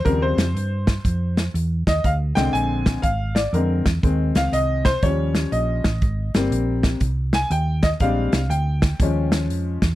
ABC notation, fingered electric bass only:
X:1
M:4/4
L:1/8
Q:"Swing" 1/4=121
K:Ab
V:1 name="Fingered electric bass" clef=bass
E,, F,, G,,2 F,,2 _F,, E,, | =D,, C,, B,,,2 A,,,2 F,, _F,, | E,, D,, C,,2 E,,2 B,,, =A,,, | A,,, G,,, B,,,2 C,,2 E,,2 |
B,,, C,, =D,,2 E,,2 F,, _F,, |]